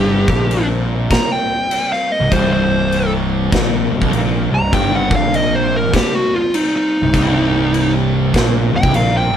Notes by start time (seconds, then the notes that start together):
Already playing: G1 G2 C3 G3 C4 G4
0.28 A#1 A#2, kick
0.51 crash
1.10 A#5, kick, snare, crash
1.32 G5
1.71 crash
1.92 F5, snare
2.12 D#5
2.20 C1 C2
2.31 C1 C2 C5, kick, crash
2.53 C5
2.92 crash
3.52 A#1 A#2, kick, snare, crash
3.90 C1 C2
4.01 C1 C2, kick
4.12 A#1 A#2, crash
4.50 C1 C2
4.54 A#5
4.73 G1 G2 G5, kick, crash
4.95 F#5
5.10 A#1 A#2, kick
5.16 F5
5.34 D#5, crash
5.55 C5
5.76 A#4
5.94 G4, kick, snare, crash
6.15 F#4
6.34 F4
6.54 D#4, crash
6.76 D#4
7.02 C1 C2
7.13 C1 C2, kick, crash
7.74 crash
8.33 A#1 A#2, kick, snare, crash
8.72 C1 C2
8.76 G5
8.83 C1 C2, kick
8.94 A#1 A#2 F5, crash
9.17 G5
9.32 C1 C2